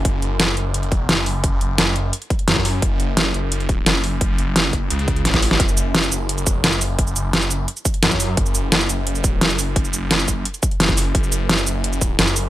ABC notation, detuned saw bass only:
X:1
M:4/4
L:1/8
Q:1/4=173
K:F#m
V:1 name="Detuned saw bass" clef=bass
z3 F,,,3 F,,,2- | F,,, F,,,3 z2 F,,2 | F,,,3 F,,,3 F,,,2- | F,,, F,,,3 C,,2 A,,,2 |
F,,,3 F,,,3 F,,,2- | F,,, F,,,3 z2 F,,2 | F,,,3 F,,,3 F,,,2- | F,,, F,,,3 z2 F,,,2 |
F,,,3 F,,,3 F,,,2 |]